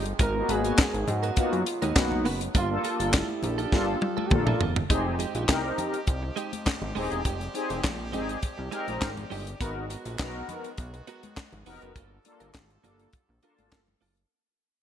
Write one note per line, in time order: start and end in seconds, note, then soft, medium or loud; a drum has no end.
0.00 0.13 G1 medium
0.00 0.15 F3 medium
0.00 2.50 G#3 medium
0.00 0.15 C4 medium
0.00 0.15 D#4 medium
0.00 0.15 G4 medium
0.06 muted clean electric guitar stroke soft
0.06 closed hi-hat medium
0.19 0.43 G#1 loud
0.19 2.52 B2 medium
0.19 2.52 D#3 medium
0.19 2.52 F#3 medium
0.19 0.39 B3 medium
0.19 0.35 F#4 medium
0.19 0.34 A#4 loud
0.19 0.52 A#4 loud
0.19 kick loud
0.19 closed hi-hat medium
0.19 muted conga soft
0.34 0.77 A#3 medium
0.34 0.77 B3 medium
0.34 0.78 D#4 medium
0.34 0.41 F4 medium
0.34 muted clean electric guitar stroke medium
0.42 0.81 F#4 medium
0.49 0.72 G#1 loud
0.49 0.64 B3 medium
0.49 0.64 F#4 medium
0.49 1.11 G#4 loud
0.49 0.64 B4 medium
0.49 closed hi-hat medium
0.64 0.76 B3 medium
0.64 0.77 F#4 medium
0.64 0.78 A#4 medium
0.64 closed hi-hat medium
0.78 0.97 B3 medium
0.78 0.94 F#4 medium
0.78 0.93 A#4 medium
0.78 kick loud
0.78 snare loud
0.78 clap loud
0.78 closed hi-hat loud
0.78 high conga medium
0.94 1.05 G#1 loud
0.94 muted clean electric guitar stroke medium
0.94 closed hi-hat soft
0.94 high conga medium
1.08 1.31 G#2 loud
1.08 1.40 F#4 loud
1.08 muted clean electric guitar stroke soft
1.08 closed hi-hat medium
1.08 muted conga soft
1.08 low conga medium
1.23 1.36 B3 medium
1.23 1.37 F#4 medium
1.23 1.37 A#4 medium
1.23 closed hi-hat soft
1.36 1.62 A#3 medium
1.36 1.62 B3 medium
1.36 1.56 B3 medium
1.36 1.62 D#4 medium
1.36 1.85 F4 loud
1.36 1.62 F#4 medium
1.36 1.53 F#4 medium
1.36 1.52 A#4 medium
1.36 kick loud
1.36 closed hi-hat medium
1.36 muted conga soft
1.52 1.63 F#2 medium
1.52 muted clean electric guitar stroke soft
1.52 closed hi-hat soft
1.66 muted clean electric guitar stroke soft
1.66 closed hi-hat medium
1.82 1.93 D#2 medium
1.82 1.95 B3 medium
1.82 2.26 D#4 medium
1.82 1.95 F#4 medium
1.82 1.96 A#4 medium
1.82 closed hi-hat medium
1.82 high conga medium
1.95 2.27 B1 loud
1.95 2.27 A#3 medium
1.95 2.27 B3 medium
1.95 2.27 D#4 medium
1.95 2.27 F#4 loud
1.95 muted clean electric guitar stroke soft
1.95 kick loud
1.95 snare loud
1.95 clap medium
1.95 closed hi-hat loud
1.95 high conga medium
2.11 muted clean electric guitar stroke medium
2.11 high conga medium
2.11 low conga medium
2.25 2.49 F#1 loud
2.25 2.45 B3 medium
2.25 2.41 F#4 loud
2.25 2.41 B4 loud
2.25 open hi-hat medium
2.41 muted clean electric guitar stroke soft
2.41 closed hi-hat medium
2.55 2.78 G1 loud
2.55 4.72 F3 medium
2.55 2.74 A#3 loud
2.55 4.72 D4 medium
2.55 2.70 F4 loud
2.55 3.17 F4 loud
2.55 4.72 G4 loud
2.55 4.72 A4 medium
2.55 2.69 A4 loud
2.55 kick loud
2.55 closed hi-hat loud
2.55 muted conga soft
2.70 3.13 A#3 medium
2.70 3.13 D4 medium
2.70 3.13 F4 medium
2.70 3.13 A4 loud
2.70 muted clean electric guitar stroke medium
2.84 2.99 A#3 medium
2.84 2.99 F4 medium
2.84 2.98 A4 medium
2.84 closed hi-hat medium
2.84 muted conga soft
3.00 3.23 G1 medium
3.00 3.12 A#3 medium
3.00 3.13 F4 medium
3.00 3.13 A4 medium
3.00 closed hi-hat medium
3.13 3.33 A#3 medium
3.13 3.61 E4 loud
3.13 3.29 F4 medium
3.13 3.28 A4 medium
3.13 kick loud
3.13 snare loud
3.13 clap loud
3.13 closed hi-hat loud
3.13 muted conga soft
3.13 high conga medium
3.29 muted clean electric guitar stroke medium
3.29 high conga soft
3.43 3.66 A#1 medium
3.43 muted clean electric guitar stroke soft
3.43 closed hi-hat medium
3.43 low conga medium
3.58 3.71 A#3 medium
3.58 3.75 D4 medium
3.58 3.72 F4 medium
3.58 3.72 A4 medium
3.58 closed hi-hat soft
3.72 3.96 G1 loud
3.72 3.97 A#3 medium
3.72 3.91 A#3 medium
3.72 3.97 D4 medium
3.72 3.97 F4 medium
3.72 3.88 F4 medium
3.72 4.27 F4 loud
3.72 3.98 A4 medium
3.72 3.86 A4 medium
3.72 kick loud
3.72 snare medium
3.88 muted clean electric guitar stroke soft
4.01 muted clean electric guitar stroke soft
4.01 high tom medium
4.01 muted conga soft
4.17 4.30 A#3 medium
4.17 4.30 F4 medium
4.17 4.31 A4 medium
4.17 high conga medium
4.25 4.36 G4 medium
4.31 4.55 A#1 loud
4.31 4.62 A#3 medium
4.31 4.62 D4 medium
4.31 4.62 F4 medium
4.31 4.62 A4 loud
4.31 kick loud
4.31 mid tom medium
4.31 muted conga soft
4.31 high conga medium
4.35 4.45 F4 medium
4.44 4.54 E4 medium
4.44 4.60 F4 medium
4.44 4.61 A4 medium
4.44 mid tom medium
4.44 high conga medium
4.44 low conga medium
4.48 4.59 A#3 medium
4.53 4.61 F4 loud
4.60 4.84 E1 medium
4.60 4.76 A#3 medium
4.60 4.76 F4 medium
4.60 4.75 A4 medium
4.60 floor tom loud
4.60 muted conga soft
4.76 muted clean electric guitar stroke soft
4.76 floor tom loud
4.89 5.26 F1 loud
4.89 9.56 F3 medium
4.89 9.56 G#3 medium
4.89 5.09 G#3 medium
4.89 9.56 C4 medium
4.89 5.15 C4 medium
4.89 7.23 D#4 medium
4.89 5.15 D#4 medium
4.89 5.05 D#4 loud
4.89 9.56 G4 medium
4.89 5.15 G4 medium
4.89 5.04 G4 loud
4.89 5.15 G#4 medium
4.89 kick loud
4.89 closed hi-hat medium
4.89 muted conga soft
5.05 muted clean electric guitar stroke medium
5.19 5.35 G#3 medium
5.19 5.34 D#4 medium
5.19 5.34 G4 medium
5.19 closed hi-hat medium
5.19 muted conga soft
5.35 5.46 A#1 medium
5.35 5.48 G#3 medium
5.35 5.48 D#4 medium
5.35 5.49 G4 medium
5.35 closed hi-hat soft
5.48 5.72 C2 medium
5.48 5.99 C4 medium
5.48 5.99 D#4 medium
5.48 5.99 G4 medium
5.48 5.99 A#4 loud
5.48 muted clean electric guitar stroke soft
5.48 kick loud
5.48 snare loud
5.48 clap loud
5.48 closed hi-hat loud
5.48 high conga medium
5.64 muted clean electric guitar stroke soft
5.78 closed hi-hat medium
5.78 low conga medium
5.93 muted clean electric guitar stroke soft
5.93 closed hi-hat soft
6.06 6.31 C2 loud
6.06 kick loud
6.06 closed hi-hat medium
6.06 muted conga soft
6.23 muted clean electric guitar stroke soft
6.36 6.56 G#3 medium
6.36 6.52 D#4 medium
6.36 6.51 G4 medium
6.36 closed hi-hat medium
6.36 muted conga soft
6.52 muted clean electric guitar stroke soft
6.52 closed hi-hat medium
6.52 high conga medium
6.66 muted clean electric guitar stroke soft
6.66 kick loud
6.66 snare loud
6.66 clap medium
6.66 closed hi-hat medium
6.66 muted conga soft
6.66 high conga medium
6.82 6.93 G#1 loud
6.82 muted clean electric guitar stroke soft
6.82 high conga medium
6.82 low conga medium
6.95 7.08 D#1 loud
6.95 7.11 G#3 medium
6.95 7.21 C4 loud
6.95 7.21 D#4 medium
6.95 7.10 D#4 medium
6.95 7.21 G4 medium
6.95 7.21 G#4 loud
6.95 7.10 G#4 loud
6.95 open hi-hat medium
7.11 7.22 E1 loud
7.11 7.24 G#3 medium
7.11 7.25 D#4 medium
7.11 7.25 G#4 medium
7.11 closed hi-hat medium
7.25 7.49 F1 loud
7.25 7.44 G#3 medium
7.25 7.40 D#4 medium
7.25 7.39 G4 medium
7.25 9.58 D5 medium
7.25 kick loud
7.25 closed hi-hat medium
7.25 muted conga soft
7.40 muted clean electric guitar stroke soft
7.40 closed hi-hat soft
7.54 7.80 C4 loud
7.54 7.80 D#4 medium
7.54 7.80 G4 medium
7.54 7.80 G#4 loud
7.54 muted clean electric guitar stroke medium
7.54 closed hi-hat medium
7.69 7.81 F1 loud
7.69 7.84 G#3 medium
7.69 7.84 D#4 medium
7.69 7.83 G#4 medium
7.69 closed hi-hat medium
7.84 8.15 A#1 medium
7.84 kick loud
7.84 snare loud
7.84 clap loud
7.84 closed hi-hat loud
7.84 muted conga soft
7.84 high conga medium
7.99 muted clean electric guitar stroke medium
8.12 8.37 G#1 medium
8.12 8.32 G#3 medium
8.12 8.38 C4 medium
8.12 8.28 D#4 medium
8.12 8.39 D#4 medium
8.12 8.39 G4 medium
8.12 8.27 G4 loud
8.12 8.39 G#4 loud
8.12 closed hi-hat medium
8.12 muted conga soft
8.12 low conga medium
8.28 muted clean electric guitar stroke medium
8.28 closed hi-hat soft
8.42 kick loud
8.42 closed hi-hat medium
8.42 muted conga soft
8.58 8.70 C2 medium
8.58 muted clean electric guitar stroke medium
8.71 8.91 G#3 medium
8.71 9.10 C4 loud
8.71 9.10 D#4 loud
8.71 8.87 D#4 medium
8.71 9.10 G4 loud
8.71 8.87 G#4 loud
8.71 9.10 A#4 loud
8.71 closed hi-hat medium
8.71 muted conga soft
8.87 8.99 A#1 medium
8.87 muted clean electric guitar stroke medium
8.87 closed hi-hat medium
8.87 high conga medium
9.01 9.25 G#1 medium
9.01 muted clean electric guitar stroke soft
9.01 kick loud
9.01 snare loud
9.01 clap medium
9.01 closed hi-hat medium
9.01 muted conga soft
9.01 high conga medium
9.17 muted clean electric guitar stroke soft
9.17 closed hi-hat soft
9.17 high conga medium
9.17 low conga medium
9.30 9.55 G1 medium
9.30 9.50 G#3 medium
9.30 9.47 D#4 medium
9.30 9.46 G4 loud
9.30 open hi-hat medium
9.47 muted clean electric guitar stroke soft
9.47 closed hi-hat medium
9.60 9.96 G#1 loud
9.60 11.93 D#3 medium
9.60 14.27 F#3 medium
9.60 11.94 G#3 medium
9.60 9.85 B3 medium
9.60 11.93 B3 medium
9.60 9.80 B3 loud
9.60 9.86 D#4 medium
9.60 11.93 F#4 loud
9.60 9.86 F#4 medium
9.60 9.76 F#4 medium
9.60 9.86 A#4 medium
9.60 9.75 A#4 loud
9.60 kick loud
9.60 closed hi-hat medium
9.60 muted conga soft
9.76 muted clean electric guitar stroke medium
9.90 10.05 B3 medium
9.90 10.05 F#4 medium
9.90 10.04 A#4 medium
9.90 closed hi-hat medium
9.90 muted conga soft
10.05 10.17 A#1 medium
10.05 10.18 B3 medium
10.05 10.19 F#4 medium
10.05 10.19 A#4 medium
10.05 closed hi-hat medium
10.19 10.43 B1 medium
10.19 10.69 B3 medium
10.19 10.69 D#4 medium
10.19 10.69 F#4 medium
10.19 10.70 A#4 loud
10.19 kick loud
10.19 snare loud
10.19 clap loud
10.19 closed hi-hat medium
10.19 high conga medium
10.35 muted clean electric guitar stroke soft
10.49 closed hi-hat medium
10.49 muted conga soft
10.49 low conga medium
10.64 muted clean electric guitar stroke soft
10.64 closed hi-hat soft
10.78 11.02 B1 loud
10.78 kick loud
10.78 closed hi-hat medium
10.94 muted clean electric guitar stroke soft
10.94 closed hi-hat soft
11.07 11.27 B3 medium
11.07 11.23 F#4 medium
11.07 11.22 A#4 loud
11.07 closed hi-hat medium
11.07 muted conga soft
11.23 muted clean electric guitar stroke soft
11.23 closed hi-hat soft
11.23 high conga medium
11.36 muted clean electric guitar stroke soft
11.36 kick loud
11.36 snare loud
11.36 clap loud
11.36 closed hi-hat medium
11.36 muted conga soft
11.36 high conga medium
11.52 11.64 G#1 medium
11.52 muted clean electric guitar stroke soft
11.52 closed hi-hat soft
11.52 high conga medium
11.52 low conga medium
11.66 11.79 F1 medium
11.66 11.91 B3 loud
11.66 11.82 B3 medium
11.66 11.91 D#4 medium
11.66 11.91 F#4 medium
11.66 11.81 F#4 medium
11.66 11.92 A#4 loud
11.66 11.81 B4 medium
11.66 open hi-hat medium
11.82 11.93 F#1 medium
11.82 11.95 B3 soft
11.82 11.96 F#4 medium
11.82 11.96 B4 medium
11.82 closed hi-hat medium
11.96 12.19 G1 loud
11.96 14.29 D3 medium
11.96 14.29 G3 medium
11.96 12.15 A#3 medium
11.96 14.29 F4 medium
11.96 12.11 F4 medium
11.96 14.29 A4 medium
11.96 12.10 A4 medium
11.96 kick loud
11.96 closed hi-hat medium
11.96 muted conga soft
12.11 muted clean electric guitar stroke soft
12.24 12.50 A#3 loud
12.24 12.50 D4 medium
12.24 12.50 F4 medium
12.24 12.50 A4 loud
12.24 muted clean electric guitar stroke soft
12.24 closed hi-hat medium
12.24 muted conga soft
12.40 12.52 G1 loud
12.40 12.55 A#3 medium
12.40 12.55 F4 medium
12.40 12.54 A#4 medium
12.40 closed hi-hat medium
12.54 12.78 G#1 medium
12.54 kick loud
12.54 snare loud
12.54 clap medium
12.54 closed hi-hat loud
12.54 muted conga soft
12.54 high conga medium
12.70 muted clean electric guitar stroke soft
12.70 closed hi-hat soft
12.83 13.08 G1 medium
12.83 13.09 A#3 medium
12.83 13.03 A#3 medium
12.83 13.09 D4 medium
12.83 13.09 F4 medium
12.83 12.99 F4 medium
12.83 13.09 A4 loud
12.83 12.98 A4 medium
12.83 closed hi-hat medium
12.83 muted conga soft
12.83 low conga medium
12.99 muted clean electric guitar stroke medium
12.99 closed hi-hat soft
13.13 kick loud
13.13 closed hi-hat medium
13.29 13.40 A#1 medium
13.29 muted clean electric guitar stroke soft
13.42 13.80 A#3 loud
13.42 13.62 A#3 medium
13.42 13.80 D4 loud
13.42 13.80 F4 loud
13.42 13.58 F4 medium
13.42 13.80 A4 loud
13.42 13.58 A#4 medium
13.42 closed hi-hat medium
13.58 13.70 G#1 medium
13.58 muted clean electric guitar stroke soft
13.58 closed hi-hat medium
13.58 high conga medium
13.72 13.96 G1 medium
13.72 kick loud
13.72 snare loud
13.72 clap loud
13.72 closed hi-hat medium
13.72 muted conga soft
13.72 high conga medium
13.87 muted clean electric guitar stroke soft
13.87 high conga medium
13.87 low conga medium
14.01 14.25 F#1 medium
14.01 14.21 A#3 medium
14.01 14.17 F4 medium
14.01 14.16 A4 loud
14.01 open hi-hat medium
14.17 muted clean electric guitar stroke soft
14.17 closed hi-hat medium